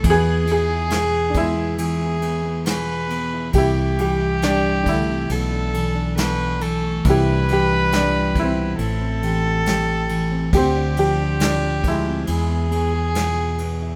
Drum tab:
RD |xxxxxxxx|xxxxxxxx|xxxxxxxx|xxxxxxxx|
SD |--o---o-|--o---o-|--o---o-|--o---o-|
BD |o--o----|o--o----|o--o----|o--o----|